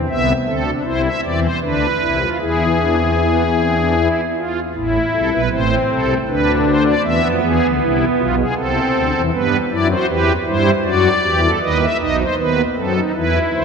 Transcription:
0.09 C2 C3 B3 E5
0.47 D2 D3 C4 A4
0.66 D4
0.84 C2 C3 E4 C5
1.04 E5
1.22 E2 E3 C4 D5
1.42 C5
1.62 D2 D3 D4 B4
2.01 C2 C3 E4
2.21 F4
2.40 E2 E3 E4 G#4
2.79 D4
2.99 C4
3.19 B3
3.58 C4
3.77 D4
3.96 E4
4.36 F4
4.74 A1 A2 E4
5.13 C2 C3 A4
5.32 B1 B2 B4
5.51 A1 A2 C4 C5
5.90 C2 C3 A4
6.28 D2 D3 D4 B4
6.66 C5
6.85 D5
7.03 E2 E3 B3 E5
7.23 F2 F3
7.43 E2 E3 G#4
7.62 D2 D3
7.81 C2 C3 E4
8.18 B1 B2 F4
8.37 G#4
8.56 C2 C3 C4 A4
8.94 D2 D3
9.14 E2 E3
9.33 G2 G3 B3 B4
9.71 F#2 F#3 E4 D5
9.89 F#4 C5
10.08 E2 E3 G4 B4
10.46 G2 G3 E4 C5
10.84 F#2 F#3 F#4 D5
11.24 E2 E3 G4
11.42 A4
11.61 D#2 D#3 B4 D#5
11.81 E5
12.00 B1 B2 D#4 D#5
12.19 C5
12.37 D#2 D#3 B3 B4
12.76 F#2 F#3 C4 A4
12.95 D#4
13.14 E2 E3 E4 B4
13.53 D2 D3 C5

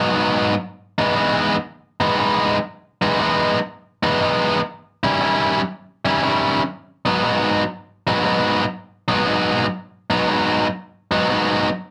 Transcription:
Already playing: B3 D#4
0.00 G#2 F#3
0.14 G#2 F#3 B3 D#4
0.98 E3 G#3 B3 D#4
1.16 E3 G#3 B3 D#4
2.00 E3 G#3 B3 D#4
2.18 E3 G#3 B3 D#4
3.02 E3 G#3 B3 D#4
3.19 E3 G#3 B3 D#4
4.03 E3 G#3 B3 D#4
4.21 E3 G#3 B3 D#4
5.03 D#3 G3 C#4 E4
5.21 D#3 G3 C#4 E4
6.05 D#3 G3 C#4 E4
6.22 D#3 G3 C#4 E4
7.06 G#2 F#3 B3 D#4
7.23 G#2 F#3 B3 D#4
8.07 G#2 F#3 B3 D#4
8.24 G#2 F#3 B3 D#4
9.08 G#2 F#3 B3 D#4
9.26 G#2 F#3 B3 D#4
10.10 G#2 F#3 B3 D#4
10.27 G#2 F#3 B3 D#4
11.11 G#2 F#3 B3 D#4
11.29 G#2 F#3 B3 D#4

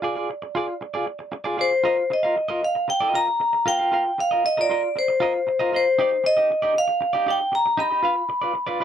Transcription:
Already playing: D5
0.02 F4 G#4 D5
0.15 F4 G#4 D5
0.30 muted clean electric guitar stroke
0.42 muted clean electric guitar stroke
0.55 F4 G#4 D5
0.68 muted clean electric guitar stroke
0.81 muted clean electric guitar stroke
0.94 F4 G#4 D5
1.06 muted clean electric guitar stroke
1.19 muted clean electric guitar stroke
1.32 muted clean electric guitar stroke
1.44 F4 G#4 D5
1.57 F4 G#4 C5 D5
1.71 muted clean electric guitar stroke
1.84 F4 A#4 D#5
1.97 muted clean electric guitar stroke
2.10 D#5, muted clean electric guitar stroke
2.23 F4 A#4 F5
2.36 muted clean electric guitar stroke
2.48 F4 A#4 D#5
2.63 F5, muted clean electric guitar stroke
2.75 muted clean electric guitar stroke
2.88 G5, muted clean electric guitar stroke
3.00 F4 A#4 D#5
3.14 F4 A#4 D#5 A#5
3.27 muted clean electric guitar stroke
3.40 muted clean electric guitar stroke
3.53 muted clean electric guitar stroke
3.66 F4 A#4 F5 G5
3.79 F4 A#4 F5
3.92 F4 A#4 F5
4.05 muted clean electric guitar stroke
4.18 F5, muted clean electric guitar stroke
4.31 F4 A#4 D#5
4.45 D#5, muted clean electric guitar stroke
4.57 F4 A#4 D5 D#5
4.70 F4 A#4 D#5
4.83 muted clean electric guitar stroke
4.96 C5, muted clean electric guitar stroke
5.08 muted clean electric guitar stroke
5.20 F4 A#4 D#5
5.34 muted clean electric guitar stroke
5.47 muted clean electric guitar stroke
5.59 F4 A#4 D#5
5.72 F4 A#4 C5 D#5
5.86 muted clean electric guitar stroke
5.99 D#4 G4 D5
6.11 muted clean electric guitar stroke
6.24 D#5, muted clean electric guitar stroke
6.37 D#4 G4 D#5
6.51 muted clean electric guitar stroke
6.62 D#4 G4 D5
6.75 F5, muted clean electric guitar stroke
6.88 muted clean electric guitar stroke
7.01 muted clean electric guitar stroke
7.13 D#4 G4 D5
7.26 D#4 G4 D5
7.31 G5
7.40 muted clean electric guitar stroke
7.52 A#5, muted clean electric guitar stroke
7.66 muted clean electric guitar stroke
7.77 D#4 G4 D#5 B5
7.91 D#4 G4 D#5
8.03 F4 B4 F5
8.16 muted clean electric guitar stroke
8.29 muted clean electric guitar stroke
8.41 F4 B4 D5
8.54 muted clean electric guitar stroke
8.67 F4 B4 D5
8.80 F4 B4

